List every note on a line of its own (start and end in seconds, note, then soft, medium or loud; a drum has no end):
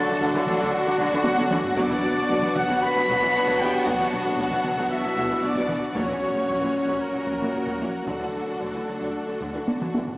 0.00 1.61 F#3 medium
0.00 0.45 A3 medium
0.00 1.61 D4 medium
0.00 1.74 D4 medium
0.00 1.77 D4 loud
0.00 1.73 F#4 medium
0.00 5.92 F#4 medium
0.00 0.44 A4 medium
0.00 0.45 A4 loud
0.00 5.92 F#5 medium
0.08 0.13 D3 medium
0.08 0.14 D3 medium
0.20 0.25 D2 medium
0.20 0.27 D3 medium
0.20 0.27 F#3 medium
0.20 taiko medium
0.34 0.40 D3 medium
0.34 0.39 E3 medium
0.34 taiko mid medium
0.46 0.52 D2 medium
0.46 0.52 D3 medium
0.46 0.52 F#3 medium
0.46 0.72 A3 medium
0.46 0.72 A4 medium
0.46 taiko mid medium
0.59 0.65 D3 loud
0.59 0.65 F#3 medium
0.59 taiko medium
0.72 1.75 F#3 loud
0.72 1.60 F#4 loud
0.72 1.75 F#4 loud
0.86 0.91 D3 medium
0.86 0.91 F#3 medium
0.99 1.04 D2 medium
0.99 1.04 D3 loud
0.99 1.04 F#3 medium
0.99 taiko medium
1.12 1.17 D3 medium
1.12 1.17 E3 medium
1.24 1.29 D2 medium
1.24 1.30 D3 medium
1.24 1.30 F#3 medium
1.24 taiko high medium
1.37 1.44 D3 medium
1.37 1.43 F#3 medium
1.37 taiko high medium
1.50 1.56 D2 medium
1.50 1.56 D3 medium
1.50 1.57 E3 medium
1.50 taiko mid loud
1.64 taiko low medium
1.77 1.82 B1 medium
1.77 1.83 B2 medium
1.77 1.82 F#3 medium
1.77 5.92 F#3 medium
1.77 5.96 B3 medium
1.77 5.92 D4 medium
1.77 2.56 D4 medium
1.77 5.92 F#4 medium
1.77 2.54 D5 loud
1.77 2.56 D5 medium
1.77 taiko loud
1.90 1.96 B2 medium
1.90 1.96 E3 medium
1.90 taiko mid soft
2.03 2.09 B1 soft
2.03 2.08 B2 medium
2.03 2.09 F#3 medium
2.16 2.21 B2 medium
2.16 2.22 D3 medium
2.29 2.35 B1 medium
2.29 2.35 B2 medium
2.29 2.35 F#3 medium
2.29 taiko medium
2.42 2.48 B2 medium
2.42 2.48 E3 medium
2.42 taiko mid soft
2.55 2.62 B1 medium
2.55 2.61 B2 medium
2.55 2.62 F#3 medium
2.55 2.83 F#4 medium
2.55 2.82 F#5 medium
2.55 2.82 F#5 loud
2.55 taiko mid medium
2.69 2.74 B2 medium
2.69 2.75 F#3 medium
2.69 taiko medium
2.81 3.62 B4 loud
2.81 3.58 B5 loud
2.81 3.60 B5 loud
2.95 3.00 B2 medium
2.95 3.01 F#3 medium
3.09 3.14 B1 medium
3.09 3.14 B2 medium
3.09 3.14 F#3 medium
3.09 taiko medium
3.22 3.27 B2 medium
3.22 3.28 E3 medium
3.35 3.40 B1 medium
3.35 3.40 B2 medium
3.35 3.40 F#3 medium
3.48 3.53 B2 medium
3.48 3.53 F#3 medium
3.48 taiko medium
3.59 3.65 B1 medium
3.59 3.66 B2 medium
3.59 3.66 E3 medium
3.59 3.87 G4 medium
3.59 3.86 G5 medium
3.59 taiko mid medium
3.85 3.91 B1 medium
3.85 3.92 B2 medium
3.85 3.92 F#3 medium
3.85 4.49 F#4 medium
3.85 4.63 F#5 medium
3.85 taiko medium
3.99 4.05 B2 medium
3.99 4.05 E3 soft
3.99 taiko mid soft
4.12 4.17 B1 soft
4.12 4.18 B2 medium
4.12 4.18 F#3 soft
4.26 4.31 B2 soft
4.26 4.31 D3 soft
4.38 4.43 B1 medium
4.38 4.44 B2 medium
4.38 4.44 F#3 medium
4.38 taiko medium
4.51 4.57 B2 soft
4.51 4.58 E3 medium
4.51 taiko mid soft
4.64 4.70 B1 medium
4.64 4.70 B2 medium
4.64 4.71 F#3 medium
4.64 4.91 F#4 medium
4.64 4.90 F#5 medium
4.64 taiko mid medium
4.77 4.83 B2 medium
4.77 4.83 F#3 medium
4.77 taiko medium
4.89 5.43 E4 medium
4.89 5.42 E5 medium
5.04 5.10 B2 medium
5.04 5.09 F#3 medium
5.16 5.22 B1 medium
5.16 5.22 B2 medium
5.16 5.22 F#3 medium
5.16 taiko medium
5.30 5.36 B2 medium
5.30 5.35 E3 soft
5.42 5.49 B1 soft
5.42 5.48 B2 soft
5.42 5.49 F#3 medium
5.42 5.96 D4 medium
5.42 5.94 D5 medium
5.56 5.62 B2 medium
5.56 5.61 F#3 medium
5.56 taiko medium
5.69 5.75 B1 medium
5.69 5.75 B2 soft
5.69 5.74 E3 medium
5.69 taiko mid medium
5.93 6.01 A#1 medium
5.93 6.01 A#2 medium
5.93 6.01 F#3 medium
5.93 9.91 F#3 medium
5.93 8.03 C#4 medium
5.93 8.08 C#4 medium
5.93 6.99 C#4 medium
5.93 9.97 F#4 medium
5.93 10.18 F#4 medium
5.93 7.00 C#5 medium
5.93 6.98 C#5 medium
5.93 10.17 F#5 medium
5.93 taiko medium
6.08 6.15 A#2 soft
6.08 6.14 E3 soft
6.21 6.27 A#1 soft
6.21 6.28 A#2 soft
6.21 6.26 F#3 soft
6.34 6.41 A#2 soft
6.34 6.40 C#3 soft
6.47 6.54 A#1 medium
6.47 6.54 A#2 medium
6.47 6.53 F#3 medium
6.47 taiko medium
6.61 6.67 A#2 soft
6.61 6.66 E3 soft
6.74 6.80 A#1 soft
6.74 6.79 A#2 soft
6.74 6.80 F#3 soft
6.87 6.93 A#2 medium
6.87 6.92 F#3 medium
6.87 taiko medium
7.00 8.08 A#3 medium
7.00 8.07 A#4 medium
7.13 7.20 A#2 soft
7.13 7.19 F#3 soft
7.26 7.33 A#1 medium
7.26 7.32 A#2 medium
7.26 7.32 F#3 soft
7.26 taiko medium
7.40 7.46 A#2 soft
7.40 7.45 E3 soft
7.53 7.59 A#1 soft
7.53 7.59 A#2 soft
7.53 7.59 F#3 soft
7.66 7.71 A#2 soft
7.66 7.72 F#3 medium
7.66 taiko medium
7.80 7.86 A#1 soft
7.80 7.86 A#2 soft
7.80 7.85 E3 soft
8.06 8.13 D2 soft
8.06 8.12 D3 soft
8.06 8.13 F#3 soft
8.06 9.91 A3 soft
8.06 9.90 D4 soft
8.06 9.97 D4 soft
8.06 10.18 D4 soft
8.06 9.91 A4 medium
8.06 10.18 A4 medium
8.06 9.91 A4 soft
8.06 taiko medium
8.20 8.26 D3 soft
8.20 8.26 E3 soft
8.34 8.39 D2 soft
8.34 8.39 D3 soft
8.34 8.40 F#3 soft
8.46 8.52 D3 soft
8.46 8.53 D3 soft
8.60 8.66 D2 soft
8.60 8.65 D3 soft
8.60 8.67 F#3 soft
8.60 taiko medium
8.73 8.79 D3 soft
8.73 8.80 E3 soft
8.87 8.93 D2 soft
8.87 8.92 D3 soft
8.87 8.93 F#3 soft
9.00 9.06 D3 soft
9.00 9.06 F#3 soft
9.00 taiko medium
9.27 9.32 D3 soft
9.27 9.33 F#3 soft
9.41 9.47 D2 soft
9.41 9.46 D3 soft
9.41 9.47 F#3 soft
9.41 taiko medium
9.54 9.60 D3 soft
9.54 9.60 E3 soft
9.68 9.74 D2 soft
9.68 9.73 D3 soft
9.68 9.73 F#3 soft
9.68 taiko high medium
9.80 9.86 D3 soft
9.80 9.86 F#3 soft
9.80 taiko mid medium
9.94 10.01 D2 soft
9.94 10.00 D3 soft
9.94 10.00 E3 soft
9.94 taiko high medium
10.08 taiko low medium